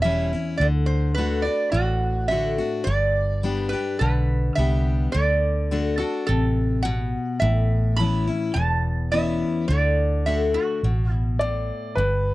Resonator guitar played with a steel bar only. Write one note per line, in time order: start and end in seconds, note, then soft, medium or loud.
0.02 0.55 E5 medium
0.57 0.65 D5 medium
0.86 1.14 C5 medium
1.15 1.45 B4 medium
1.42 1.73 D5 medium
1.72 2.31 F#4 medium
2.28 2.88 E5 medium
2.84 3.48 D5 medium
3.48 3.73 C5 medium
3.69 3.97 B4 medium
3.99 4.59 B4 medium
4.55 5.09 E5 medium
5.12 6.01 D5 medium
5.98 6.25 A4 medium
6.27 6.80 A4 medium
6.83 7.37 F#5 medium
7.40 7.99 E5 medium
7.96 8.56 B5 loud
8.54 9.08 A5 medium
9.12 9.65 E5 medium
9.68 10.27 D5 medium
10.26 10.55 E5 medium
10.54 11.13 F#4 medium
11.13 11.36 E4 medium